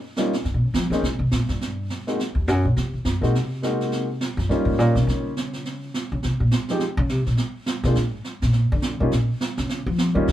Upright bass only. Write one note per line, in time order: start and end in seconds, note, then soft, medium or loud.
0.45 0.53 G2 medium
0.54 0.64 A#2 medium
0.64 0.73 C#3 medium
0.74 0.90 F3 medium
0.90 1.02 D#3 medium
1.02 1.18 C#3 medium
1.19 1.31 C3 medium
1.32 1.48 A#2 medium
1.49 1.87 G2 medium
2.35 2.48 D#2 medium
2.48 2.65 F#2 medium
2.65 2.76 A#2 medium
2.77 2.92 C3 medium
2.93 3.04 D#2 soft
3.05 3.21 F#2 medium
3.22 3.34 A#2 medium
3.34 4.21 C3 medium
4.37 4.48 F#2 medium
4.49 4.65 G2 medium
4.65 4.79 G#2 medium
4.79 4.95 A#2 medium
4.95 5.07 C3 medium
5.07 5.90 C#3 medium
6.12 6.23 C#3 medium
6.24 6.40 C3 medium
6.40 6.51 A#2 medium
6.97 7.10 C#3 loud
7.10 7.26 C3 medium
7.26 7.38 A#2 medium
7.84 7.95 C3 medium
7.96 8.13 A#2 medium
8.13 8.20 G#2 medium
8.42 8.69 A#2 medium
8.72 8.98 D3 loud
9.00 9.11 C3 medium
9.13 9.29 A#2 medium
9.58 9.84 C#3 medium
9.86 10.13 F3 loud
10.15 10.26 D#3 medium
10.28 10.32 C#3 medium